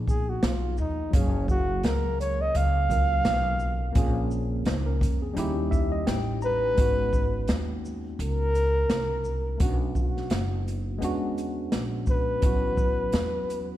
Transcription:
Already playing: upright bass A#1, tine electric piano F3 A#3 B3 D#4 G#4
0.08 flugelhorn G#4, kick, shaker
0.29 flugelhorn F#4
0.43 upright bass B1, flugelhorn F4, snare, closed hi-hat
0.77 upright bass D#2, flugelhorn D#4, shaker
1.11 upright bass F#1, tine electric piano F#3 A#3 C#4, flugelhorn C#4, kick, closed hi-hat
1.15 tine electric piano G#4 F5
1.48 flugelhorn F#4, kick, shaker
1.83 upright bass C#2, flugelhorn A#4, snare, closed hi-hat
2.20 flugelhorn C#5, closed hi-hat, shaker
2.41 flugelhorn D#5
2.54 upright bass C#2, flugelhorn F5, closed hi-hat
2.89 tine electric piano F#3 A#3 C#4 F4 A#4, kick, closed hi-hat, shaker
3.25 upright bass B1, snare, closed hi-hat
3.60 shaker
3.93 upright bass A#1, tine electric piano A#3 C4 C#4, kick, closed hi-hat
3.97 tine electric piano F4 G#4
4.31 shaker
4.65 upright bass C#2, tine electric piano D#4 C5, snare, closed hi-hat
4.86 tine electric piano C#4 A#4
5.01 upright bass F2, kick, closed hi-hat, shaker
5.22 tine electric piano C4 G#4
5.33 upright bass D#2, tine electric piano G3 C#4 D#4, closed hi-hat
5.38 tine electric piano E4 G4
5.71 tine electric piano E5, kick, shaker
5.92 tine electric piano D#5
6.07 upright bass A1, tine electric piano G5, snare, closed hi-hat
6.42 flugelhorn B4, tine electric piano A#5, shaker
6.75 upright bass G#1, tine electric piano G#3 B3 C#4, kick, closed hi-hat
6.79 tine electric piano D#4 F#4
7.13 kick, shaker
7.48 upright bass D#2, snare, closed hi-hat
7.85 shaker
8.19 upright bass C#2, flugelhorn A#4, closed hi-hat
8.55 closed hi-hat, shaker
8.90 upright bass C2, snare, closed hi-hat
9.24 shaker
9.58 upright bass B1, tine electric piano A3 B3 C#4, flugelhorn F#4, kick, closed hi-hat
9.62 tine electric piano D4 F#4
9.95 flugelhorn F#4, kick, shaker
10.17 snare
10.30 upright bass F#1, snare, closed hi-hat
10.68 closed hi-hat, shaker
10.98 upright bass E2, tine electric piano G#3 B3 C#4, closed hi-hat
11.03 tine electric piano D4 F#4
11.38 closed hi-hat, shaker
11.72 upright bass A#1, snare, closed hi-hat
12.07 flugelhorn B4, kick, shaker
12.40 upright bass A1, tine electric piano F#3 B3 C#4, kick, closed hi-hat
12.44 tine electric piano E4 F#4
12.77 kick, shaker
13.12 upright bass E2, snare, closed hi-hat
13.50 closed hi-hat, shaker

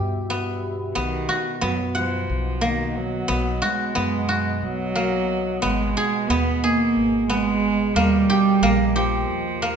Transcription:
Already playing: upright bass G2, ambient pad B2 G4 E5, guzheng B3 G4
0.30 guzheng B3
0.95 upright bass B1, cello D#3, guzheng B3, ambient pad D#5 F#5
1.29 guzheng F#4
1.61 upright bass F#2, cello F#3, guzheng B3
1.94 cello F3, guzheng F#5
2.30 upright bass B1
2.61 cello D#3, guzheng A#3
2.95 cello F#3
3.28 upright bass B1, guzheng B3
3.62 cello G#3, guzheng F#4
3.95 upright bass F#2, guzheng B3
4.29 guzheng F#4
4.62 upright bass B1, cello F#3
4.96 guzheng A#3
5.62 upright bass G#1, cello G#3, guzheng B3, ambient pad G#4
5.97 guzheng G#4
6.28 upright bass D#2, cello B3, guzheng B3
6.63 cello A#3, guzheng G#4
6.96 upright bass G#1
7.29 cello G#3, guzheng B3
7.95 upright bass D#2, cello G3, ambient pad A#3 G4, guzheng A#3
8.30 guzheng G4
8.62 upright bass A#1, guzheng A#3
8.95 cello F3, guzheng G4
9.29 upright bass D#2
9.62 guzheng A#3

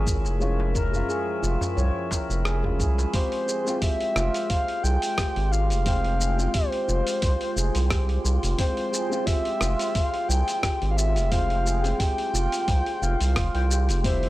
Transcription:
Already playing: analog synth bass G#1, ambient pad F3 A#4 G#5 C#6, felt piano G#3 C#4 F4, synth texture E4 E5
0.07 handpan F4, kick, darbuka ka, shaker
0.25 analog synth bass F1, darbuka ka, shaker
0.40 felt piano G#3 C#4 F4, handpan C#5, ambient pad G5, shaker
0.60 darbuka tek
0.75 handpan A#4, kick, darbuka ka, darbuka dum, shaker
0.91 felt piano G#3 C#4, darbuka dum, shaker
0.95 felt piano F4
1.09 handpan G#4, shaker
1.43 analog synth bass F1, handpan F4, shaker
1.61 darbuka ka, darbuka tek, darbuka dum, shaker
1.77 analog synth bass C2, handpan C#5, shaker
2.11 handpan A#4, kick, darbuka tek, shaker
2.30 analog synth bass F1, shaker
2.45 handpan G#4, cross-stick, shaker
2.63 felt piano G#3 C#4 F4, kick, darbuka ka
2.79 analog synth bass C2, handpan G#4, kick, shaker
2.98 darbuka tek, shaker
3.13 felt piano G#3 C4 F4 G4, ambient pad G#3 F4 G5 C6, handpan C5, soft synth lead C5, kick, open hi-hat, shaker
3.32 open hi-hat
3.48 handpan G#4, shaker
3.65 felt piano G#3 C4 F4 G5, shaker
3.82 handpan G4, soft synth lead E5, kick, open hi-hat, shaker
4.00 open hi-hat
4.16 analog synth bass F1, handpan F4, cross-stick, shaker
4.34 open hi-hat, shaker
4.50 handpan C5, soft synth lead F5, kick, open hi-hat, shaker
4.68 open hi-hat
4.83 analog synth bass C2, handpan G#4, soft synth lead G5, shaker
5.02 open hi-hat, shaker
5.18 handpan G4, kick, cross-stick, open hi-hat, shaker
5.36 analog synth bass G#1, open hi-hat
5.52 handpan F4, soft synth lead F5, shaker
5.70 analog synth bass F1, open hi-hat, shaker
5.85 felt piano G#3 C4 F4 G5, handpan C5, soft synth lead F5, kick, open hi-hat, shaker
6.04 open hi-hat
6.20 handpan G#4, shaker
6.37 felt piano G#3 C4 F4 G5, shaker
6.54 handpan G4, soft synth lead C5, kick, open hi-hat, shaker
6.72 open hi-hat
6.88 analog synth bass F1, handpan F4, shaker
7.07 open hi-hat, shaker
7.22 analog synth bass C2, handpan C5, kick, open hi-hat, shaker
7.41 open hi-hat
7.56 analog synth bass F1, handpan G#4, shaker
7.75 analog synth bass C2, open hi-hat, shaker
7.90 handpan G4, kick, cross-stick, open hi-hat, shaker
8.09 open hi-hat
8.25 analog synth bass C2, handpan F4, shaker
8.43 analog synth bass F1, open hi-hat, shaker
8.58 felt piano G#3 C4 F4 G5, handpan C5, soft synth lead C5, kick, open hi-hat, shaker
8.77 open hi-hat
8.93 handpan G#4, shaker
9.09 felt piano G#3 C4 F4 G5, shaker
9.26 handpan G4, soft synth lead E5, kick, open hi-hat, shaker
9.45 open hi-hat
9.61 analog synth bass F1, handpan F4, cross-stick, shaker
9.79 open hi-hat, shaker
9.95 handpan C5, soft synth lead F5, kick, open hi-hat, shaker
10.14 open hi-hat
10.29 analog synth bass C2, handpan G#4, soft synth lead G5, shaker
10.48 open hi-hat, shaker
10.63 handpan G4, kick, cross-stick, open hi-hat, shaker
10.82 analog synth bass G#1, open hi-hat
10.91 soft synth lead F5
10.97 handpan F4, soft synth lead E5, shaker
11.16 analog synth bass F1, open hi-hat, shaker
11.31 felt piano G#3 C4 F4 G5, handpan C5, soft synth lead F5, kick, open hi-hat, shaker
11.50 open hi-hat
11.66 handpan G#4, shaker
11.82 felt piano G#3 C4 F4, open hi-hat, shaker
11.86 felt piano G5
11.99 handpan G4, soft synth lead G5, kick, open hi-hat, shaker
12.18 open hi-hat
12.34 analog synth bass F1, handpan F4, shaker
12.52 open hi-hat, shaker
12.68 analog synth bass C2, handpan C5, kick, open hi-hat, shaker
12.86 open hi-hat
13.02 analog synth bass F1, handpan F5, shaker
13.21 analog synth bass C2, handpan F4, open hi-hat, shaker
13.36 analog synth bass F1, handpan F4, kick, cross-stick, open hi-hat, shaker
13.55 analog synth bass C2, handpan G5, open hi-hat
13.70 handpan G4, shaker
13.89 analog synth bass F1, open hi-hat, shaker
14.04 synth texture E3 E6, felt piano G3 C4 E4 G4, ambient pad C5 E6, soft synth lead C5, handpan E5, kick, open hi-hat, shaker
14.23 open hi-hat

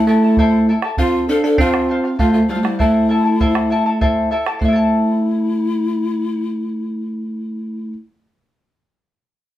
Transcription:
0.07 tine electric piano A3, pan flute E4, charango E4 A4 E5 A5
0.24 charango E4 A4 A5
0.37 charango E4 A4 C5 E5 A5, bombo rim, bombo low
0.69 charango E4 A4 E5 A5
0.82 charango E4 A4 A5, bombo rim
0.97 tine electric piano C4, pan flute F4, charango A4 C5 F5, bombo low
1.28 tine electric piano D4, pan flute A4, charango A4 C5 F5
1.44 tine electric piano D4, pan flute A4, charango C5 F5
1.58 tine electric piano C4, pan flute F4, charango A4 C5 F5, bombo low
1.74 bombo rim
1.89 charango A4 C5 F5
2.04 charango C5 F5, bombo rim
2.19 tine electric piano A3, pan flute F4, charango A4 C5 F5, bombo rim, bombo low
2.33 tine electric piano A3, pan flute F4
2.48 tine electric piano G3, pan flute E4, charango A4 C5 F5
2.54 tine electric piano A3, pan flute F4
2.62 tine electric piano G3, pan flute E4, charango F5, bombo rim
2.67 charango C5
2.79 tine electric piano A3, pan flute E4, charango E4 A4 C5 E5 A5, bombo rim, bombo low
3.09 charango E4 A4 E5 A5
3.24 charango E4 A4 A5
3.40 charango E4 A4 C5 E5 A5, bombo low
3.55 bombo rim
3.70 charango E4 A4 E5 A5
3.86 charango E4 A4 A5
4.01 charango E4 A4 C5 E5 A5, bombo low
4.31 charango E4 A4 E5 A5
4.46 charango E4 A4 A5, bombo rim
4.59 tine electric piano A3, pan flute E4, charango C5, bombo low
4.65 charango E4 E5
4.73 charango A4 A5

